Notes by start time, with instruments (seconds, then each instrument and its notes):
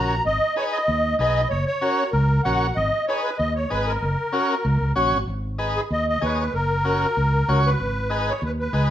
Already playing: fingered electric bass A#1, transistor combo organ C#4 F#4 A#4, accordion A#5
0.25 fingered electric bass G#1, accordion D#5
0.56 transistor combo organ D#4 G#4 B4, accordion C#5
0.72 accordion D#5
0.88 fingered electric bass D#2
1.19 fingered electric bass B1, transistor combo organ D#4 G#4 B4, accordion D#5
1.49 fingered electric bass F#1, accordion C#5
1.66 accordion C#5
1.81 transistor combo organ C#4 F#4 A#4
2.11 fingered electric bass C#2, accordion A#4
2.44 fingered electric bass A#1, transistor combo organ C#4 F#4 A#4, accordion F#5
2.76 fingered electric bass G#1, accordion D#5
3.07 transistor combo organ D#4 G#4 B4, accordion C#5
3.23 accordion B4
3.38 fingered electric bass D#2, accordion D#5
3.56 accordion C#5
3.70 fingered electric bass G#1, transistor combo organ D#4 G#4 B4, accordion B4
3.87 accordion A#4
4.02 fingered electric bass F#1
4.32 transistor combo organ C#4 F#4 A#4
4.65 fingered electric bass C#2
4.81 fingered electric bass C#2
4.96 fingered electric bass A#1, transistor combo organ C#4 F#4 C#5
5.12 fingered electric bass G#1
5.27 fingered electric bass G#1
5.58 transistor combo organ D#4 G#4 B4
5.76 accordion G#4
5.91 fingered electric bass D#2, accordion D#5
6.09 accordion D#5
6.21 fingered electric bass D#2, transistor combo organ D#4 G#4 C#5, accordion B4
6.40 accordion B4
6.54 fingered electric bass F#1, accordion A#4
6.85 transistor combo organ C#4 F#4 A#4
7.17 fingered electric bass C#2
7.48 fingered electric bass C#2, transistor combo organ C#4 F#4 C#5
7.67 accordion B4
7.80 fingered electric bass G#1
8.10 transistor combo organ D#4 G#4 B4
8.29 accordion C#5
8.42 fingered electric bass D#2, accordion B4
8.60 accordion B4
8.73 fingered electric bass C#2, transistor combo organ D#4 G#4 B4